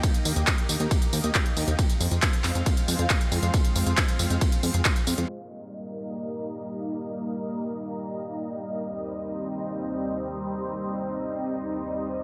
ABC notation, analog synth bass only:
X:1
M:4/4
L:1/16
Q:1/4=137
K:Eb
V:1 name="Analog synth bass" clef=bass
z2 E,, E,, z2 E,, E,, z2 E,, E,, z2 E,, E,, | z2 F,, F,, z2 F,, F,, z2 F,, F,, z2 F,, F,, | z2 F,, F,, z2 F,, F,, z2 F,, F,, z2 F,, F,, | z16 |
z16 | z16 | z16 |]